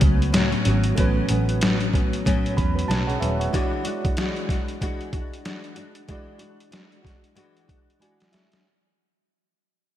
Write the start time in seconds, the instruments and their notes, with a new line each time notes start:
Already playing: reed electric piano A3 C#4 F#4 B4
0.01 fingered electric bass C#2, nylon-string guitar F#3 B3 C#4, kick, closed hi-hat
0.22 closed hi-hat
0.32 nylon-string guitar A2 F#3 B3 C#4, snare, closed hi-hat
0.52 closed hi-hat
0.65 fingered electric bass G#1, nylon-string guitar F#3 B3 C#4, closed hi-hat
0.84 closed hi-hat
0.96 fingered electric bass A1, nylon-string guitar A2 F#3 B3 C#4, reed electric piano A3 C#4 F#4, kick, closed hi-hat
1.00 reed electric piano B4
1.29 fingered electric bass A1, nylon-string guitar F#3 B3 C#4, closed hi-hat
1.49 closed hi-hat
1.61 nylon-string guitar A2 F#3 B3 C#4, snare, closed hi-hat
1.80 closed hi-hat
1.93 nylon-string guitar F#3 B3 C#4, kick, closed hi-hat
2.13 closed hi-hat
2.25 nylon-string guitar A2 F#3 B3 C#4, kick, closed hi-hat
2.46 closed hi-hat
2.56 fingered electric bass E2, nylon-string guitar F#3 B3 C#4, reed electric piano B5, kick, closed hi-hat
2.75 reed electric piano F#4 B4, closed hi-hat
2.88 fingered electric bass B1, nylon-string guitar A2 F#3 B3 C#4, reed electric piano A5, snare, closed hi-hat
3.07 reed electric piano G#4 C#5 F#5, closed hi-hat
3.20 fingered electric bass D#1, nylon-string guitar F#3 B3 C#4, reed electric piano B4 E5, closed hi-hat
3.40 reed electric piano C#5 F#5, closed hi-hat
3.50 nylon-string guitar E3 G#3 D4, reed electric piano G#3 E4 F#4, kick, closed hi-hat
3.55 nylon-string guitar F#4, reed electric piano D5
3.84 nylon-string guitar G#3 D4 F#4, closed hi-hat
4.05 kick, closed hi-hat
4.17 nylon-string guitar E3 G#3 D4 F#4, snare, closed hi-hat
4.36 closed hi-hat
4.49 nylon-string guitar G#3 D4 F#4, kick, snare, closed hi-hat
4.68 closed hi-hat
4.81 nylon-string guitar E3 G#3 D4 F#4, kick, closed hi-hat
5.01 closed hi-hat
5.12 nylon-string guitar G#3 D4 F#4, kick, closed hi-hat
5.34 closed hi-hat
5.45 nylon-string guitar E3 G#3 D4 F#4, snare, closed hi-hat
5.64 closed hi-hat
5.75 nylon-string guitar G#3 D4 F#4, closed hi-hat
5.95 closed hi-hat
6.08 nylon-string guitar E3 G#3 D4 F#4, reed electric piano G#3 E4 F#4, kick, closed hi-hat
6.13 reed electric piano D5
6.38 nylon-string guitar G#3 D4 F#4, closed hi-hat
6.60 closed hi-hat
6.71 nylon-string guitar E3 G#3 D4 F#4, snare, closed hi-hat
6.92 closed hi-hat
7.03 nylon-string guitar G#3 D4 F#4, kick, snare
7.07 closed hi-hat
7.24 closed hi-hat
7.35 nylon-string guitar E3 G#3 D4 F#4, closed hi-hat
7.57 closed hi-hat
7.68 nylon-string guitar G#3 D4 F#4, kick, closed hi-hat
7.90 closed hi-hat
7.99 nylon-string guitar E3 G#3 D4 F#4, reed electric piano G#3 E4 F#4 D5 G#5, closed hi-hat
8.20 snare, closed hi-hat
8.32 nylon-string guitar G#3 D4 F#4, reed electric piano E5, snare, closed hi-hat
8.52 snare, closed hi-hat